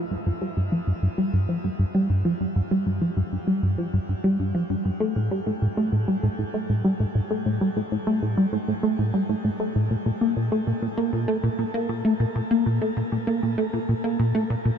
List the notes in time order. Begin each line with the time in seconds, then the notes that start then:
0.11 G2
0.26 G2
0.41 G3
0.57 G2
0.72 F3
0.87 G2
1.02 G2
1.18 G3
1.33 G2
1.49 F3
1.64 G2
1.79 G2
1.95 G3
2.10 G2
2.25 F3
2.40 G2
2.56 G2
2.71 G3
2.86 G2
3.01 F3
3.17 G2
3.32 G2
3.47 G3
3.63 G2
3.78 F3
3.93 G2
4.09 G2
4.24 G3
4.39 G2
4.54 F3
4.70 G2
4.85 G2
5.00 A3
5.16 A2
5.31 G3
5.46 A2
5.62 A2
5.77 A3
5.92 A2
6.08 G3
6.23 A2
6.39 A2
6.54 A3
6.69 A2
6.84 G3
7.00 A2
7.15 A2
7.30 A3
7.46 A2
7.61 G3
7.76 A2
7.92 A2
8.07 A3
8.22 A2
8.37 G3
8.52 A2
8.68 A2
8.83 A3
8.99 A2
9.14 G3
9.29 A2
9.44 A2
9.60 A3
9.76 A2
9.91 A#2
10.06 A#2
10.21 A#3
10.36 A#2
10.52 A3
10.67 A#2
10.82 A#2
10.97 A#3
11.13 A#2
11.28 A3
11.43 A#2
11.58 A#2
11.74 A#3
11.89 A#2
12.05 A3
12.20 A#2
12.35 A#2
12.51 A#3
12.66 A#2
12.81 A3
12.97 A#2
13.12 A#2
13.27 A#3
13.43 A#2
13.58 A3
13.73 A#2
13.89 A#2
14.04 A#3
14.19 A#2
14.35 A3
14.50 A#2
14.65 A#2